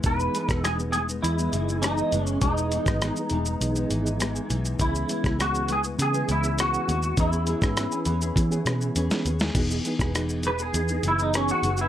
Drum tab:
CC |----------------|----------------|----------------|----------------|
HH |x-x-x-x-x-x-x-x-|x-x-x-x-x-x-x-x-|x-x-x-x-x-x-x-x-|x-x-x-x-x-x-x-x-|
SH |xxxxxxxxxxxxxxxx|xxxxxxxxxxxxxxxx|xxxxxxxxxxxxxxxx|xxxxxxxxxxxxxxxx|
SD |---rr-------r---|---rr-------r---|---rr-------r---|---rr-----r--o-o|
BD |o--o------------|o--o------------|o--o------------|o--o----o-------|

CC |x---------------|
HH |x-x-x-x-x-x-x-x-|
SH |xxxxxxxxxxxxxxxx|
SD |---rr-------r---|
BD |o--o------------|